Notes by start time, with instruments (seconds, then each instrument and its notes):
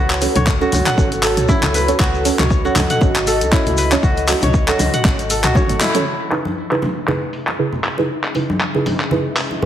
Already playing: fm bass C#2, kora E4 F#4 A4 B4, analog synth pad F#4 A4 C#5
0.10 clap, shekere
0.21 synth stab C#4 F#4 A4 C#5, open hi-hat, muted conga, shekere
0.36 fm bass C#2, kora C#5, closed hi-hat, mid tom, high conga, shekere
0.47 kick, clap, shekere
0.61 synth stab C#4 F#4 A4 C#5, kora F#4, muted conga, shekere
0.72 fm bass C#2, open hi-hat, high conga, low conga, shekere
0.86 kora F#5, clap, closed hi-hat, mid tom, shekere
0.98 fm bass G#1, synth stab C#4 F#4 A4 C#5, kick, muted conga, low conga, shekere
1.12 closed hi-hat, shekere
1.23 kora A4, clap, open hi-hat, shekere
1.37 fm bass C#2, closed hi-hat, mid tom, muted conga, shekere
1.49 synth stab C#4 F#4 A4 C#5, kora E4, kick, high conga, low conga, shekere
1.63 fm bass C#2, clap, closed hi-hat, low conga, shekere
1.74 kora B4, open hi-hat, shekere
1.88 synth stab C#4 F#4 A4 C#5, closed hi-hat, muted conga, shekere
2.00 fm bass C#2, kora F#4, analog synth pad D#5, kick, clap, shekere
2.14 shekere
2.25 synth stab C#4 F#4 A4 C#5, open hi-hat, muted conga, shekere
2.39 fm bass C#2, kora C#5, clap, closed hi-hat, mid tom, high conga, shekere
2.50 kick, shekere
2.65 synth stab C#4 F#4 A4 C#5, kora F#4, muted conga, shekere
2.76 fm bass C#2, clap, open hi-hat, high conga, low conga, shekere
2.90 kora F#5, closed hi-hat, mid tom, shekere
3.01 fm bass G#1, synth stab C#4 F#4 A4 C#5, kick, muted conga, low conga, shekere
3.16 clap, closed hi-hat, shekere
3.27 kora A4, open hi-hat, shekere
3.41 fm bass C#2, closed hi-hat, muted conga, shekere
3.52 synth stab C#4 F#4 A4 C#5, kora E4, kick, clap, shekere
3.66 fm bass C#2, closed hi-hat, low conga, shekere
3.77 kora B4, open hi-hat, shekere
3.91 synth stab C#4 F#4 A4 C#5, clap, closed hi-hat, muted conga, shekere
4.03 fm bass C#2, kora F#4, kick, shekere
4.17 closed hi-hat, shekere
4.28 synth stab C#4 F#4 A4 C#5, clap, open hi-hat, muted conga, shekere
4.41 fm bass C#2, kora C#5, closed hi-hat, mid tom, high conga, shekere
4.54 kick, shekere
4.68 synth stab C#4 F#4 A4 C#5, kora F#4, clap, muted conga, shekere
4.79 fm bass C#2, open hi-hat, high conga, low conga, shekere
4.94 kora F#5, closed hi-hat, mid tom, shekere
5.05 fm bass G#1, synth stab C#4 F#4 A4 C#5, kick, clap, muted conga, low conga, shekere
5.19 closed hi-hat, shekere
5.30 kora A4, open hi-hat, shekere
5.44 fm bass C#2, kora F#4, clap, closed hi-hat, mid tom, muted conga, shekere
5.55 synth stab C#4 F#4 A4 C#5, kora C#5, kick, high conga, low conga, shekere
5.69 fm bass G#1, closed hi-hat, low conga, shekere
5.81 kora E4, clap, open hi-hat, high tom, high conga, shekere
5.95 synth stab C#4 F#4 A4 C#5, closed hi-hat, mid tom, muted conga, shekere
6.06 analog synth pad C#4 G#4 D#5 E5, crash
6.31 synth stab C#3 D#4 E4 G#4 B4, clap, open hi-hat, muted conga
6.45 high conga
6.71 synth stab C#3 D#4 E4 G#4 B4, clap, muted conga
6.82 open hi-hat, high conga, low conga
7.08 synth stab C#3 D#4 E4 G#4 B4, clap, muted conga, low conga
7.33 open hi-hat
7.47 clap, muted conga
7.59 synth stab C#3 D#4 E4 G#4 B4
7.72 low conga
7.84 clap, open hi-hat
7.98 synth stab C#3 D#4 E4 G#4 B4, muted conga
8.24 clap
8.35 synth stab C#3 D#4 E4 G#4 B4, open hi-hat, muted conga
8.50 high conga
8.61 clap
8.75 synth stab C#3 D#4 E4 G#4 B4, muted conga
8.86 open hi-hat, high conga, low conga
9.00 clap
9.11 synth stab C#3 D#4 E4 G#4 B4, muted conga, low conga
9.37 clap, open hi-hat
9.51 muted conga
9.62 high conga, low conga